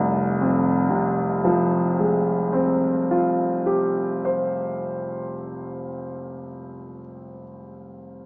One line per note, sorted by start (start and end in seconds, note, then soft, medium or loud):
0.00 2.81 F1 soft
0.00 3.25 C2 soft
0.42 3.76 F2 soft
0.90 4.24 C3 soft
1.44 4.79 F3 soft
1.99 5.34 G#3 soft
2.53 5.87 C4 soft
3.11 6.46 F4 soft
3.66 7.01 G4 soft
4.25 7.42 C5 soft